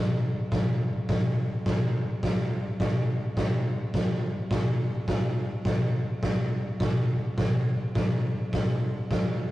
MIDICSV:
0, 0, Header, 1, 2, 480
1, 0, Start_track
1, 0, Tempo, 572519
1, 913, Time_signature, 4, 2, 24, 8
1, 7977, End_track
2, 0, Start_track
2, 0, Title_t, "Drums"
2, 432, Note_on_c, 9, 46, 50
2, 435, Note_on_c, 9, 36, 112
2, 437, Note_on_c, 9, 38, 106
2, 516, Note_off_c, 9, 46, 0
2, 519, Note_off_c, 9, 36, 0
2, 521, Note_off_c, 9, 38, 0
2, 910, Note_on_c, 9, 46, 51
2, 914, Note_on_c, 9, 36, 108
2, 915, Note_on_c, 9, 38, 100
2, 994, Note_off_c, 9, 46, 0
2, 997, Note_off_c, 9, 36, 0
2, 999, Note_off_c, 9, 38, 0
2, 1390, Note_on_c, 9, 46, 49
2, 1392, Note_on_c, 9, 36, 104
2, 1395, Note_on_c, 9, 38, 107
2, 1474, Note_off_c, 9, 46, 0
2, 1476, Note_off_c, 9, 36, 0
2, 1479, Note_off_c, 9, 38, 0
2, 1869, Note_on_c, 9, 36, 110
2, 1870, Note_on_c, 9, 46, 55
2, 1875, Note_on_c, 9, 38, 106
2, 1953, Note_off_c, 9, 36, 0
2, 1954, Note_off_c, 9, 46, 0
2, 1959, Note_off_c, 9, 38, 0
2, 2345, Note_on_c, 9, 46, 52
2, 2347, Note_on_c, 9, 36, 112
2, 2350, Note_on_c, 9, 38, 107
2, 2429, Note_off_c, 9, 46, 0
2, 2430, Note_off_c, 9, 36, 0
2, 2434, Note_off_c, 9, 38, 0
2, 2823, Note_on_c, 9, 46, 49
2, 2824, Note_on_c, 9, 36, 101
2, 2828, Note_on_c, 9, 38, 105
2, 2907, Note_off_c, 9, 46, 0
2, 2908, Note_off_c, 9, 36, 0
2, 2912, Note_off_c, 9, 38, 0
2, 3303, Note_on_c, 9, 36, 105
2, 3304, Note_on_c, 9, 46, 49
2, 3310, Note_on_c, 9, 38, 108
2, 3386, Note_off_c, 9, 36, 0
2, 3388, Note_off_c, 9, 46, 0
2, 3393, Note_off_c, 9, 38, 0
2, 3778, Note_on_c, 9, 46, 49
2, 3779, Note_on_c, 9, 36, 115
2, 3783, Note_on_c, 9, 38, 104
2, 3862, Note_off_c, 9, 46, 0
2, 3863, Note_off_c, 9, 36, 0
2, 3867, Note_off_c, 9, 38, 0
2, 4257, Note_on_c, 9, 46, 49
2, 4258, Note_on_c, 9, 36, 106
2, 4262, Note_on_c, 9, 38, 103
2, 4341, Note_off_c, 9, 36, 0
2, 4341, Note_off_c, 9, 46, 0
2, 4346, Note_off_c, 9, 38, 0
2, 4736, Note_on_c, 9, 46, 45
2, 4738, Note_on_c, 9, 36, 106
2, 4741, Note_on_c, 9, 38, 94
2, 4820, Note_off_c, 9, 46, 0
2, 4822, Note_off_c, 9, 36, 0
2, 4825, Note_off_c, 9, 38, 0
2, 5221, Note_on_c, 9, 36, 107
2, 5221, Note_on_c, 9, 46, 51
2, 5226, Note_on_c, 9, 38, 109
2, 5305, Note_off_c, 9, 36, 0
2, 5305, Note_off_c, 9, 46, 0
2, 5310, Note_off_c, 9, 38, 0
2, 5701, Note_on_c, 9, 46, 52
2, 5703, Note_on_c, 9, 36, 116
2, 5706, Note_on_c, 9, 38, 120
2, 5785, Note_off_c, 9, 46, 0
2, 5786, Note_off_c, 9, 36, 0
2, 5790, Note_off_c, 9, 38, 0
2, 6183, Note_on_c, 9, 46, 51
2, 6185, Note_on_c, 9, 36, 117
2, 6188, Note_on_c, 9, 38, 103
2, 6267, Note_off_c, 9, 46, 0
2, 6269, Note_off_c, 9, 36, 0
2, 6272, Note_off_c, 9, 38, 0
2, 6665, Note_on_c, 9, 46, 52
2, 6669, Note_on_c, 9, 36, 110
2, 6670, Note_on_c, 9, 38, 105
2, 6749, Note_off_c, 9, 46, 0
2, 6752, Note_off_c, 9, 36, 0
2, 6754, Note_off_c, 9, 38, 0
2, 7151, Note_on_c, 9, 36, 110
2, 7151, Note_on_c, 9, 46, 49
2, 7156, Note_on_c, 9, 38, 96
2, 7234, Note_off_c, 9, 46, 0
2, 7235, Note_off_c, 9, 36, 0
2, 7239, Note_off_c, 9, 38, 0
2, 7635, Note_on_c, 9, 36, 111
2, 7636, Note_on_c, 9, 46, 48
2, 7641, Note_on_c, 9, 38, 112
2, 7719, Note_off_c, 9, 36, 0
2, 7720, Note_off_c, 9, 46, 0
2, 7725, Note_off_c, 9, 38, 0
2, 7977, End_track
0, 0, End_of_file